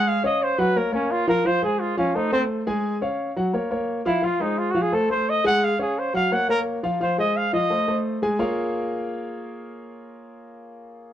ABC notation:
X:1
M:4/4
L:1/8
Q:1/4=173
K:Bbm
V:1 name="Trumpet"
f e c _c B D F B | c A F D E C z2 | z6 z =E | F E (3F G A =A c e g |
f A c f g B z2 | c e f e3 z2 | z8 | z8 |]
V:2 name="Grand piano"
[A,Aa] [Ddf]2 [G,Gg] [B,Bd] [B,Bd]2 [F,Ff] | [F,Ff] [A,Ac]2 [F,Ff] [=A,=Ac] [A,Ac]2 [^G,^G^g]- | [^G,^G^g] [Ddf]2 [_G,_G_g] [B,Bd] [B,Bd]2 [F,Ff] | [F,Ff] [A,Ac]2 [F,Ff] [=A,=Ac] [A,Ac]2 [_A,_Aa]- |
[A,Aa] [Ddf]2 [G,Gg] [B,Bd] [B,Bd]2 [F,Ff] | [F,Ff] [A,Ac]2 [F,Ff] [=A,=Ac] [A,Ac]2 [^G,^G^g] | [B,FABdf]8- | [B,FABdf]8 |]